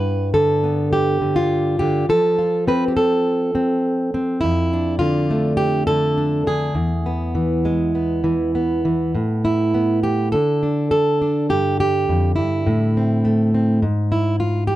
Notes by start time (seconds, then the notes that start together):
Already playing: G2 B3 B4
0.34 D3 A4
0.64 B3
0.93 G4
1.21 D3
1.36 F4
1.79 D3 G4
2.09 F3 A4
2.38 F4
2.67 C4 B4
2.88 G4
2.97 A4
3.55 C4
4.14 C4
4.41 F2 E4
4.73 D4
4.99 D3 F4
5.31 A3
5.57 G4
5.87 D3 A4
6.17 D4
6.47 D3 G#4
6.75 E2
7.06 B3
7.35 E3
7.65 G#3
7.95 B3
8.24 E3
8.55 B3
8.85 E3
9.15 A2
9.45 E4
9.74 B3
10.03 G4
10.32 D3 A4
10.63 D4
10.91 A4
11.22 D4
11.49 G2 G4
11.80 G4
12.09 F2
12.36 G2 E4
12.67 A2
12.97 C4
13.25 A3
13.54 C4
13.82 G#2
14.12 E4
14.40 F4
14.67 G4